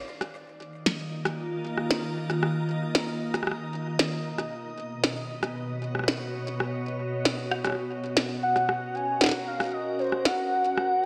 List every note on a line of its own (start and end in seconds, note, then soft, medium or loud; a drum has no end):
0.08 4.25 D#3 medium
0.21 cross-stick medium
0.43 4.25 A#3 medium
0.55 10.10 D#5 medium
0.79 4.25 F4 medium
0.86 snare loud
1.13 5.02 A#5 medium
1.25 cross-stick medium
1.78 cross-stick medium
1.91 snare loud
2.30 cross-stick medium
2.43 cross-stick medium
2.95 snare loud
3.34 cross-stick medium
3.43 cross-stick medium
3.47 cross-stick medium
3.51 cross-stick soft
3.99 snare loud
4.25 8.43 B2 medium
4.38 cross-stick medium
4.55 8.43 B3 medium
5.04 snare loud
5.20 11.05 F#4 medium
5.40 9.20 C#5 medium
5.40 cross-stick medium
5.95 cross-stick medium
5.99 cross-stick soft
6.04 cross-stick soft
6.08 snare loud
6.60 cross-stick medium
7.25 snare loud
7.51 cross-stick medium
7.64 cross-stick medium
7.67 cross-stick medium
7.70 cross-stick soft
7.75 cross-stick soft
8.17 snare loud
8.43 11.05 C#4 medium
8.43 8.96 F#5 loud
8.56 cross-stick medium
8.69 11.05 A#4 medium
8.69 cross-stick medium
8.95 9.23 G#5 loud
9.21 9.49 F#5 loud
9.21 snare loud
9.24 snare medium
9.26 snare medium
9.29 snare medium
9.31 snare soft
9.47 9.75 F5 loud
9.60 cross-stick medium
9.73 10.01 D#5 loud
9.99 10.25 C5 loud
10.12 cross-stick medium
10.25 11.05 F#5 loud
10.25 snare loud
10.78 cross-stick medium